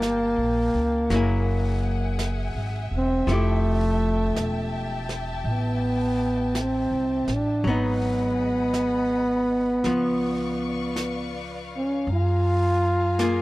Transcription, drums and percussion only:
0.02 brush sweep soft
0.02 snare soft
0.02 hi-hat pedal soft
1.10 brush sweep soft
1.10 snare soft
2.19 brush sweep soft
2.19 snare soft
2.19 hi-hat pedal soft
3.28 brush sweep soft
3.28 snare soft
4.36 brush sweep soft
4.36 snare soft
4.36 hi-hat pedal soft
5.09 snare soft
5.45 brush sweep soft
6.55 brush sweep soft
6.55 snare soft
6.55 hi-hat pedal medium
7.28 snare soft
7.64 brush sweep soft
8.74 brush sweep soft
8.74 snare soft
8.74 hi-hat pedal soft
9.84 brush sweep soft
9.84 snare soft
10.96 brush sweep soft
10.96 snare soft
10.96 hi-hat pedal soft
12.08 brush sweep soft
13.19 brush sweep soft
13.19 snare soft
13.19 hi-hat pedal soft

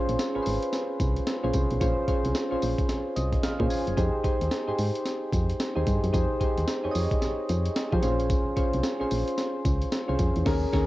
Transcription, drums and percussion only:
0.09 closed hi-hat medium
0.19 snare loud
0.19 closed hi-hat medium
0.19 tambourine loud
0.46 open hi-hat medium
0.46 tambourine medium
0.62 closed hi-hat medium
0.73 snare medium
0.73 closed hi-hat medium
0.73 tambourine medium
1.00 kick loud
1.00 closed hi-hat medium
1.00 tambourine medium
1.16 closed hi-hat soft
1.27 snare loud
1.27 closed hi-hat medium
1.27 tambourine loud
1.53 kick loud
1.53 closed hi-hat medium
1.53 tambourine medium
1.71 closed hi-hat soft
1.81 kick loud
1.81 closed hi-hat medium
1.81 tambourine medium
2.08 kick medium
2.08 closed hi-hat medium
2.25 closed hi-hat medium
2.35 snare loud
2.35 closed hi-hat medium
2.35 tambourine loud
2.62 open hi-hat medium
2.62 tambourine medium
2.78 kick loud
2.78 closed hi-hat medium
2.89 snare medium
2.89 closed hi-hat medium
2.89 tambourine medium
3.17 closed hi-hat medium
3.17 tambourine medium
3.33 kick medium
3.33 closed hi-hat medium
3.43 snare loud
3.43 closed hi-hat medium
3.43 tambourine loud
3.60 kick loud
3.70 open hi-hat medium
3.70 tambourine medium
3.87 closed hi-hat soft
3.97 kick loud
3.97 closed hi-hat medium
3.97 tambourine medium
4.24 kick medium
4.24 closed hi-hat medium
4.41 closed hi-hat medium
4.51 snare loud
4.51 closed hi-hat medium
4.51 tambourine loud
4.79 open hi-hat medium
4.79 tambourine medium
4.95 closed hi-hat medium
5.06 snare medium
5.06 closed hi-hat medium
5.06 tambourine medium
5.33 kick loud
5.33 closed hi-hat medium
5.33 tambourine medium
5.50 closed hi-hat soft
5.60 snare loud
5.60 closed hi-hat medium
5.60 tambourine loud
5.87 kick loud
5.87 closed hi-hat medium
5.87 tambourine medium
6.04 closed hi-hat soft
6.14 kick loud
6.14 closed hi-hat medium
6.14 tambourine medium
6.41 kick medium
6.41 closed hi-hat medium
6.58 closed hi-hat medium
6.68 snare loud
6.68 closed hi-hat medium
6.68 tambourine loud
6.95 open hi-hat medium
6.95 tambourine medium
7.11 kick loud
7.11 closed hi-hat medium
7.22 snare medium
7.22 closed hi-hat medium
7.22 tambourine medium
7.49 closed hi-hat medium
7.49 tambourine medium
7.65 closed hi-hat medium
7.76 snare loud
7.76 closed hi-hat medium
7.76 tambourine loud
7.92 kick loud
8.03 closed hi-hat medium
8.03 tambourine medium
8.20 closed hi-hat soft
8.30 kick loud
8.30 closed hi-hat medium
8.30 tambourine medium
8.57 kick medium
8.57 closed hi-hat medium
8.73 closed hi-hat medium
8.83 snare loud
8.83 closed hi-hat medium
8.83 tambourine loud
9.11 open hi-hat medium
9.11 tambourine medium
9.28 closed hi-hat medium
9.38 snare medium
9.38 closed hi-hat medium
9.38 tambourine medium
9.65 kick loud
9.65 closed hi-hat medium
9.65 tambourine medium
9.82 closed hi-hat medium
9.92 snare loud
9.92 closed hi-hat medium
9.92 tambourine loud
10.19 kick loud
10.19 closed hi-hat medium
10.19 tambourine medium
10.36 closed hi-hat soft
10.46 kick loud
10.46 snare loud
10.46 crash medium
10.73 kick loud
10.73 snare loud

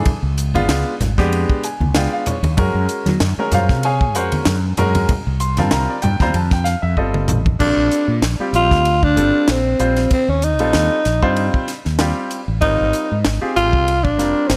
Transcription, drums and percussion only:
0.05 kick loud
0.05 ride medium
0.05 low conga medium
0.38 hi-hat pedal medium
0.38 ride medium
0.55 ride medium
0.55 high conga medium
0.69 snare loud
0.69 ride medium
1.01 snare soft
1.01 hi-hat pedal medium
1.01 ride medium
1.01 low conga medium
1.18 kick medium
1.18 snare soft
1.32 ride medium
1.50 kick medium
1.63 hi-hat pedal medium
1.63 ride medium
1.81 high conga medium
1.95 snare loud
1.95 ride medium
2.26 hi-hat pedal medium
2.26 ride medium
2.26 low conga medium
2.44 ride medium
2.44 high conga medium
2.57 kick loud
2.57 ride medium
2.57 low conga medium
2.89 hi-hat pedal medium
2.89 ride medium
3.06 snare soft
3.06 ride medium
3.06 high conga medium
3.20 snare loud
3.20 ride medium
3.52 snare soft
3.52 hi-hat pedal medium
3.52 ride medium
3.52 low conga medium
3.69 kick medium
3.69 snare soft
3.83 ride medium
4.01 kick medium
4.15 hi-hat pedal medium
4.15 ride medium
4.32 ride medium
4.32 high conga medium
4.45 snare loud
4.45 ride medium
4.77 hi-hat pedal medium
4.77 ride medium
4.77 low conga medium
4.95 ride medium
4.95 high conga medium
5.09 kick loud
5.09 ride medium
5.09 low conga medium
5.40 hi-hat pedal medium
5.40 ride medium
5.57 snare soft
5.57 ride medium
5.57 high conga medium
5.71 snare loud
5.71 ride medium
6.02 hi-hat pedal medium
6.02 ride medium
6.02 low conga medium
6.20 kick medium
6.20 snare soft
6.20 high conga medium
6.34 ride medium
6.51 kick loud
6.51 snare soft
6.65 snare soft
6.65 hi-hat pedal medium
6.65 ride medium
6.97 kick medium
7.14 mid tom medium
7.28 hi-hat pedal medium
7.28 mid tom loud
7.28 low conga medium
7.46 kick loud
7.46 high conga medium
7.60 kick medium
7.60 crash medium
7.91 hi-hat pedal medium
7.91 ride medium
8.22 snare loud
8.22 ride medium
8.54 hi-hat pedal medium
8.54 ride medium
8.71 kick medium
8.71 snare soft
8.85 ride medium
9.03 kick medium
9.17 hi-hat pedal medium
9.17 ride medium
9.48 snare loud
9.48 ride medium
9.79 hi-hat pedal medium
9.79 ride medium
9.96 snare soft
9.96 ride medium
10.11 kick loud
10.11 ride medium
10.42 hi-hat pedal medium
10.42 ride medium
10.59 ride medium
10.73 snare loud
10.73 ride medium
11.05 snare soft
11.05 hi-hat pedal medium
11.05 ride medium
11.23 kick medium
11.36 ride medium
11.54 kick medium
11.68 snare soft
11.68 hi-hat pedal medium
11.68 ride medium
11.85 snare soft
11.99 snare loud
11.99 ride medium
12.31 hi-hat pedal medium
12.31 ride medium
12.62 kick loud
12.62 ride medium
12.93 hi-hat pedal medium
12.93 ride medium
13.25 snare loud
13.25 ride medium
13.57 hi-hat pedal medium
13.57 ride medium
13.73 kick medium
13.88 ride medium
14.05 kick medium
14.19 snare soft
14.19 hi-hat pedal medium
14.19 ride medium
14.50 snare loud
14.50 ride medium

